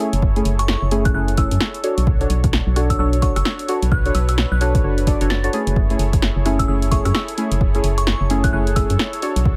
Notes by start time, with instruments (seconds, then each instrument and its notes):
Already playing: analog synth pad E4 G#4 A4 C#5
0.00 synth stab A3 C#4 E4 G#4
0.13 fm bass F#1, closed hi-hat
0.22 kick
0.36 synth stab A3 C#4 E4 G#4, closed hi-hat
0.45 fm bass F#1, open hi-hat
0.59 synth bell C#6, cross-stick, closed hi-hat
0.68 snare
0.82 fm bass F#1
0.91 synth stab A3 C#4 E4 G#4, open hi-hat
1.05 synth bell F#6, kick, closed hi-hat
1.14 fm bass F#1, synth stab A3 C#4 E4 G#4, synth bell F#6
1.28 closed hi-hat
1.37 synth stab A3 C#4 E4 G#4, synth bell E6, kick, open hi-hat
1.51 fm bass F#2, closed hi-hat
1.60 snare
1.74 closed hi-hat
1.84 synth stab D4 F#4 A4 C#5, analog synth pad D4 F#4 C#5, open hi-hat
1.98 fm bass B1, closed hi-hat
2.07 kick
2.21 synth stab D4 F#4 A4 C#5, closed hi-hat
2.30 fm bass B1, open hi-hat
2.44 kick, cross-stick, closed hi-hat
2.53 snare
2.67 fm bass B1
2.76 synth stab D4 F#4 A4 C#5, cross-stick, open hi-hat
2.90 synth bell E6, kick, closed hi-hat
2.99 fm bass B1, synth stab D4 F#4 A4 C#5, synth bell E6
3.13 closed hi-hat
3.22 synth stab D4 F#4 A4 C#5, synth bell C#6, kick, open hi-hat
3.36 fm bass F#1, synth bell E6, cross-stick, closed hi-hat
3.45 synth bell E6, snare
3.59 closed hi-hat
3.68 synth stab D4 F#4 A4 C#5, analog synth pad B4, open hi-hat
3.82 fm bass B1, closed hi-hat
3.92 synth bell F#6, kick
4.06 synth stab D4 F#4 A4 C#5, closed hi-hat
4.15 fm bass B1, synth bell E6, open hi-hat
4.29 synth bell E6, cross-stick, closed hi-hat
4.38 snare
4.52 fm bass B1, synth bell F#6
4.61 synth stab D4 F#4 A4 C#5, synth bell F#6, open hi-hat
4.75 kick, closed hi-hat
4.84 fm bass F#1, synth stab D4 F#4 A4 C#5
4.98 closed hi-hat
5.07 synth stab D4 F#4 A4 D5, kick, open hi-hat
5.21 fm bass F#1, synth stab D4 F#4 A4 C#5, closed hi-hat
5.30 synth bell A6, snare
5.44 synth stab D4 F#4 A4 C#5, synth bell A6, closed hi-hat
5.53 synth stab A3 C#4 E4 G#4, open hi-hat
5.67 fm bass F#1, closed hi-hat
5.76 analog synth pad E4 G#4 A4 C#5, kick
5.90 synth stab A3 C#4 E4 G#4, closed hi-hat
5.99 fm bass F#1, open hi-hat
6.13 kick, cross-stick, closed hi-hat
6.22 snare
6.36 fm bass F#1
6.46 synth stab A3 C#4 E4 G#4, cross-stick, open hi-hat
6.59 synth bell E6, kick, closed hi-hat
6.68 fm bass F#1, synth stab A3 C#4 E4 G#4, synth bell E6
6.82 closed hi-hat
6.91 synth stab A3 C#4 E4 G#4, synth bell C#6, kick, open hi-hat
7.05 fm bass F#2, synth bell E6, cross-stick, closed hi-hat
7.15 synth bell E6, snare
7.28 closed hi-hat
7.38 synth stab A3 C#4 E4 G#4, open hi-hat
7.51 fm bass F#1, closed hi-hat
7.61 kick
7.75 synth stab A3 C#4 E4 G#4, closed hi-hat
7.84 fm bass F#1, open hi-hat
7.98 synth bell C#6, cross-stick, closed hi-hat
8.07 snare
8.21 fm bass F#1
8.30 synth stab A3 C#4 E4 G#4, open hi-hat
8.44 synth bell F#6, kick, closed hi-hat
8.53 fm bass F#1, synth stab A3 C#4 E4 G#4, synth bell F#6
8.67 closed hi-hat
8.76 synth stab A3 C#4 E4 G#4, synth bell E6, kick, open hi-hat
8.90 fm bass F#2, closed hi-hat
8.99 snare
9.13 closed hi-hat
9.22 analog synth pad D4 F#4, synth stab D4 F#4 A4 C#5, open hi-hat
9.36 fm bass B1, closed hi-hat
9.45 kick